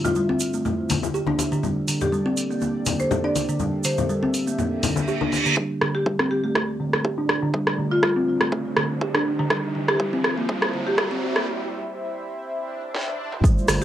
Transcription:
Already playing: analog synth pad G2 A3 E4 F4 C5 E5
0.05 marimba F4, low conga, shaker
0.15 kalimba G3, marimba F4, shaker
0.29 kalimba C4, high conga
0.40 open hi-hat, shaker
0.53 kalimba A3, shaker
0.65 kalimba A3, low conga, shaker
0.90 kalimba D3, open hi-hat, high conga, low conga, shaker
1.03 high conga, shaker
1.14 kalimba G4, shaker
1.27 kalimba D4, high conga
1.39 open hi-hat, high conga, shaker
1.52 kalimba D3, shaker
1.63 kalimba G3, analog synth pad A#3 D4 G4 A4 D5, high conga, low conga, shaker
1.88 kalimba D3, open hi-hat, shaker
2.01 marimba G4, low conga, shaker
2.12 kalimba G3, shaker
2.26 kalimba C4
2.37 open hi-hat, shaker
2.50 kalimba A#3, shaker
2.61 kalimba A#3, high conga, shaker
2.86 kalimba D3, open hi-hat, high conga, low conga, shaker
3.00 marimba C5, shaker
3.11 kalimba G4, high conga, low conga, shaker
3.24 kalimba D4, marimba D5
3.36 open hi-hat, high conga, shaker
3.49 kalimba D3, shaker
3.60 kalimba G3, analog synth pad E5, high conga, low conga, shaker
3.84 kalimba D3, marimba C5, open hi-hat, shaker
3.98 low conga, shaker
4.09 kalimba G3, shaker
4.23 kalimba C4, high conga
4.34 open hi-hat, shaker
4.47 kalimba A#3, shaker
4.59 kalimba A#3, reverse cymbal, low conga, shaker
4.83 kalimba D3, open hi-hat, high conga, low conga, shaker
4.96 high conga, shaker
5.08 kalimba G4, shaker
5.21 kalimba D4, high conga
5.32 open hi-hat, high conga, shaker
5.45 kalimba D3, shaker
5.57 kalimba G3, analog synth pad A3 D4 F4 C5 D5, kick, riser
5.81 sub bass G1, kalimba D3, cross-stick
5.95 marimba G4
6.06 kalimba G3, kick
6.19 sub bass G1, kalimba C4, cross-stick
6.31 marimba G4
6.44 kalimba A3, marimba G4
6.55 sub bass D2, kalimba A3, kick, cross-stick
6.80 kalimba D3
6.93 cross-stick
7.05 sub bass G1, kalimba G4, kick
7.18 kalimba D4
7.29 cross-stick
7.42 sub bass G1, kalimba D3
7.54 kalimba G3, kick
7.67 cross-stick
7.78 sub bass G1, kalimba D3
7.91 marimba F4
8.03 kalimba G3, kick, cross-stick
8.16 sub bass G1, kalimba C4
8.41 kalimba A3, cross-stick
8.52 sub bass D2, kalimba A3, kick
8.77 kalimba D3, cross-stick
9.01 sub bass G1, kalimba G4, kick
9.15 kalimba D4, cross-stick
9.39 sub bass G1, kalimba D3
9.50 kalimba G3, analog synth pad G3 C4 E4 E5, kick, cross-stick
9.75 kalimba D3
9.88 marimba G4, cross-stick
10.00 kalimba G3, kick
10.13 kalimba C4
10.24 cross-stick
10.38 kalimba A#3
10.49 sub bass D2, kalimba G3, kick
10.62 cross-stick
10.74 kalimba D3
10.87 marimba G4
10.98 kalimba G3, kick, cross-stick
11.11 kalimba C4
11.36 kalimba A#3, cross-stick
12.46 swell
12.95 snare
13.08 high tom
13.32 mid tom
13.44 kalimba G3, analog synth pad A3 D4 F4 C5 D5, kick, shaker
13.58 shaker
13.68 sub bass G1, kalimba D3, cross-stick, open hi-hat, shaker

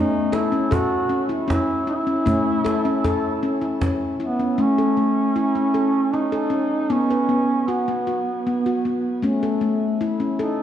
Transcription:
Already playing: handpan A3 C#4, duduk D#4
0.32 duduk E4, handpan A4, cajon slap
0.52 handpan C#4, cajon slap
0.71 duduk F#4, handpan A4, cajon bass
1.09 handpan C#4, cajon slap
1.29 handpan E4
1.48 handpan C#4, duduk E4, cajon bass, cajon slap
1.87 handpan E4, duduk E4
2.07 handpan C#4, cajon slap
2.26 handpan A3 C#4, cajon bass
2.65 handpan A4, cajon slap
2.85 handpan C#4
3.04 handpan A4, cajon bass, cajon slap
3.43 handpan C#4
3.62 handpan E4
3.81 handpan C#4, cajon bass, cajon slap
4.20 duduk B3, handpan E4, cajon slap
4.39 handpan C#4, cajon slap
4.58 handpan A3 C#4, duduk C#4
4.78 handpan A4
4.97 handpan A3
5.36 handpan E4
5.55 handpan C#4
5.74 handpan A4
6.13 handpan C#4, duduk D#4
6.32 handpan A4
6.50 handpan C#4
6.90 handpan B3 D#4, duduk C#4
7.11 handpan B4
7.29 handpan B3
7.68 duduk B3, handpan F#4
7.88 handpan B3
8.07 handpan F#4
8.47 handpan B3
8.66 handpan F#4
8.85 handpan B3
9.22 handpan A3 C#4
9.43 handpan A4
9.61 handpan A3
10.01 handpan E4
10.20 handpan C#4
10.39 duduk D#4, handpan A4

